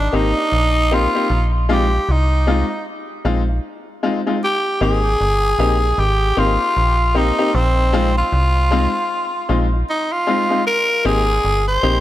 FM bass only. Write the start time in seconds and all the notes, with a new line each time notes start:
0.13 G#1
0.52 A#1
1.30 A#1
2.09 C2
3.25 A#1
4.81 G#1
5.21 G1
5.59 A#1
5.98 G#1
6.37 G#1
6.77 A#1
7.55 A#1
8.32 C2
9.50 A#1
11.05 G#1
11.45 G1
11.83 A#1